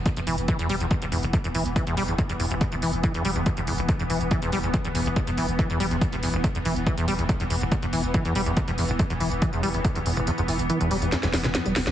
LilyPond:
<<
  \new Staff \with { instrumentName = "Synth drone" } { \clef bass \time 4/4 \key c \major \tempo 4 = 141 <e b>1~ | <e b>1~ | <e b>1~ | <e b>1~ |
<e b>1~ | <e b>1~ | <e b>1 | }
  \new Staff \with { instrumentName = "Acid bass" } { \clef bass \time 4/4 \key c \major e,16 e,16 e16 r16 e16 e,16 g16 e,16 e,16 e,16 e,16 e,,16 e,16 e,16 e16 r16 | e16 e,16 g16 e,16 e,16 e,16 e,16 e,,16 e,16 e,16 e16 r16 e16 e,16 g16 e,16 | e,16 e,16 e,16 e,,16 e,16 e,16 e16 r16 e16 e,16 g16 e,16 e,16 e,16 e,16 e,,16 | e,16 e,16 e16 r16 e16 e,16 g16 e,16 e,16 e,16 e,16 e,,16 e,16 e,16 e16 r16 |
e16 e,16 g16 e,16 e,16 e,16 e,16 e,,16 e,16 e,16 e16 r16 e16 e,16 g16 e,16 | e,16 e,16 e,16 e,,16 e,16 e,16 e16 r16 e16 e,16 g16 e,16 e,16 e,16 e,16 e,,16 | e,16 e,16 e16 r16 e16 e,16 g16 e,16 e,16 e,16 e,16 b,16 f,16 g16 d,16 e,16 | }
  \new Staff \with { instrumentName = "Sub bass" } { \clef bass \time 4/4 \key c \major r16 e,,16 e,,16 e,,16 r16 e,,16 e,,16 e,,16 r16 e,,16 e,,16 e,,16 r16 e,,16 e,,16 e,,16 | r16 e,,16 e,,16 e,,16 r16 e,,16 e,,16 e,,16 r16 e,,16 e,,16 e,,16 r16 e,,16 e,,16 e,,16 | r16 e,,16 e,,16 e,,16 r16 e,,16 e,,16 e,,16 r16 e,,16 e,,16 e,,16 r16 e,,16 e,,16 e,,16 | r16 e,,16 e,,16 e,,16 r16 e,,16 e,,16 e,,16 r16 e,,16 e,,16 e,,16 r16 e,,16 e,,16 e,,16 |
r16 e,,16 e,,16 e,,16 r16 e,,16 e,,16 e,,16 r16 e,,16 e,,16 e,,16 r16 e,,16 e,,16 e,,16 | r16 e,,16 e,,16 e,,16 r16 e,,16 e,,16 e,,16 r16 e,,16 e,,16 e,,16 r16 e,,16 e,,16 e,,16 | r16 e,,16 e,,16 e,,16 r16 e,,16 e,,16 e,,16 r16 e,,16 e,,16 e,,16 r16 e,,16 e,,16 e,,16 | }
  \new DrumStaff \with { instrumentName = "Drums" } \drummode { \time 4/4 <hh bd>16 hh16 hho16 hh16 <hh bd>16 hh16 hho16 hh16 <hh bd>16 hh16 hho16 hh16 <hh bd>16 hh16 hho16 hh16 | <hh bd>16 hh16 hho16 hh16 <hh bd>16 hh16 hho16 hh16 <hh bd>16 hh16 hho16 hh16 <hh bd>16 hh16 hho16 hh16 | <hh bd>16 hh16 hho16 hh16 <hh bd>16 hh16 hho16 hh16 <hh bd>16 hh16 hho16 hh16 <hh bd>16 hh16 hho16 hh16 | <hh bd>16 hh16 hho16 hh16 <hh bd>16 hh16 hho16 hh16 <hh bd>16 hh16 hho16 hh16 <hh bd>16 hh16 hho16 hh16 |
<hh bd>16 hh16 hho16 hh16 <hh bd>16 hh16 hho16 hh16 <hh bd>16 hh16 hho16 hh16 <hh bd>16 hh16 hho16 hh16 | <hh bd>16 hh16 hho16 hh16 <hh bd>16 hh16 hho16 hh16 <hh bd>16 hh16 hho16 hh16 <hh bd>16 hh16 hho16 hh16 | hh16 hh16 hho16 hh16 hh16 hh16 hho16 hh16 <hh sn>16 <hh sn>16 <hho sn>16 <hh sn>16 <hh sn>16 hh16 <hho sn>16 <hh sn>16 | }
>>